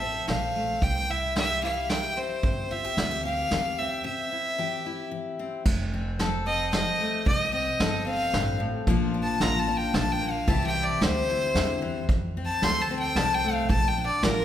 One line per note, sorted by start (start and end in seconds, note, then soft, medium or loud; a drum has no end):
0.00 0.20 A1 medium
0.00 0.23 F3 medium
0.00 1.09 C4 medium
0.00 0.79 A4 medium
0.00 0.28 E5 medium
0.28 0.74 A#1 medium
0.28 0.76 F3 medium
0.28 0.84 F5 medium
0.28 snare medium
0.28 closed hi-hat medium
0.56 0.79 A3 medium
0.82 1.99 C2 medium
0.82 1.30 C3 medium
0.82 1.12 G5 loud
0.82 kick loud
0.82 closed hi-hat medium
1.10 1.63 E4 soft
1.10 1.37 E5 medium
1.36 1.84 E3 medium
1.36 2.71 G4 medium
1.36 1.62 E5 loud
1.36 snare medium
1.36 closed hi-hat medium
1.63 2.74 E4 medium
1.63 1.91 F5 medium
1.90 2.38 E3 medium
1.90 2.19 G5 medium
1.90 snare medium
1.90 closed hi-hat medium
2.17 3.79 C4 medium
2.17 2.73 C5 medium
2.43 2.82 G1 medium
2.43 2.92 C3 medium
2.43 kick loud
2.43 closed hi-hat medium
2.71 2.84 F4 medium
2.71 3.24 E5 medium
2.84 2.97 G4 medium
2.97 3.43 D2 medium
2.97 3.46 E3 medium
2.97 3.11 F4 medium
2.97 snare medium
2.97 closed hi-hat medium
3.11 3.24 G4 soft
3.25 4.02 G4 medium
3.25 3.80 F5 loud
3.51 3.97 E2 medium
3.51 3.99 E3 medium
3.51 snare medium
3.51 closed hi-hat medium
3.78 5.39 C4 medium
3.78 4.04 E5 medium
4.04 4.53 C3 medium
4.04 5.08 E5 medium
4.32 4.85 E4 soft
4.58 5.07 E3 medium
4.58 5.63 G4 medium
4.86 5.63 E4 medium
5.11 5.60 E3 medium
5.39 5.63 C4 soft
5.65 6.82 F1 medium
5.65 6.14 F2 medium
5.65 kick loud
5.65 crash medium
5.94 6.46 C4 medium
6.19 6.68 F3 medium
6.19 7.24 A4 medium
6.19 snare medium
6.19 closed hi-hat medium
6.46 7.52 C4 medium
6.46 6.72 D#5 medium
6.73 7.21 F3 medium
6.73 7.25 D#5 medium
6.73 snare medium
6.73 closed hi-hat medium
7.00 7.24 A3 medium
7.26 7.65 C2 medium
7.26 7.75 F2 medium
7.26 7.53 D#5 medium
7.26 kick loud
7.26 closed hi-hat medium
7.53 8.05 C4 medium
7.53 8.05 D#5 medium
7.80 8.26 G1 medium
7.80 8.28 F3 medium
7.80 8.84 A4 medium
7.80 snare medium
7.80 closed hi-hat medium
8.06 8.87 C4 medium
8.06 8.59 F5 loud
8.33 8.79 A1 medium
8.33 8.60 G2 medium
8.33 snare medium
8.33 closed hi-hat medium
8.60 8.87 A2 medium
8.87 9.26 A#1 medium
8.87 9.36 A#2 medium
8.87 9.39 F3 medium
8.87 10.20 A#3 medium
8.87 9.13 D4 medium
8.87 9.40 F4 medium
8.87 kick loud
8.87 closed hi-hat medium
9.14 9.67 D4 medium
9.23 9.43 A5 medium
9.40 9.86 A1 medium
9.40 9.89 F3 medium
9.40 10.48 F4 medium
9.40 9.61 A#5 medium
9.40 snare medium
9.40 closed hi-hat medium
9.59 9.78 A5 medium
9.68 10.45 D4 medium
9.77 9.96 G5 medium
9.94 10.40 A#1 medium
9.94 10.43 F3 medium
9.94 10.13 A5 medium
9.94 snare medium
9.94 closed hi-hat medium
10.12 10.32 G5 medium
10.21 10.45 A#3 medium
10.31 10.50 F5 medium
10.48 10.87 C2 medium
10.48 10.96 C3 medium
10.48 11.00 E3 medium
10.48 12.06 C4 medium
10.48 10.74 E4 medium
10.48 11.01 G4 medium
10.48 10.66 A5 medium
10.48 kick loud
10.48 closed hi-hat medium
10.66 10.85 G5 medium
10.75 11.29 E4 medium
10.83 11.03 D5 medium
11.01 11.47 D2 medium
11.01 11.50 E3 medium
11.01 12.06 G4 medium
11.01 12.06 C5 loud
11.01 snare medium
11.01 closed hi-hat medium
11.30 12.06 E4 medium
11.55 12.01 E2 medium
11.55 11.82 D3 medium
11.55 snare medium
11.55 closed hi-hat medium
11.82 12.09 E3 medium
12.09 12.48 F2 medium
12.09 12.57 F2 medium
12.09 kick loud
12.09 closed hi-hat medium
12.37 12.90 C4 medium
12.45 12.65 A5 medium
12.62 13.08 D2 medium
12.62 13.11 F3 medium
12.62 13.67 A4 medium
12.62 12.83 C6 loud
12.62 snare medium
12.62 closed hi-hat medium
12.81 12.98 A5 medium
12.91 13.70 C4 medium
12.99 13.18 G5 medium
13.15 13.61 C2 medium
13.15 13.65 F3 medium
13.15 13.36 A5 loud
13.15 snare medium
13.15 closed hi-hat medium
13.34 13.54 G5 medium
13.44 13.67 A3 medium
13.53 13.70 F5 medium
13.70 14.08 A#1 medium
13.70 14.18 A#2 medium
13.70 13.90 A5 medium
13.70 kick loud
13.70 closed hi-hat medium
13.88 14.05 G5 medium
13.98 14.45 D4 medium
14.06 14.25 D5 medium
14.23 14.45 A1 medium
14.23 14.45 F3 medium
14.23 14.45 F4 medium
14.23 14.45 A#4 loud
14.23 snare medium
14.23 closed hi-hat medium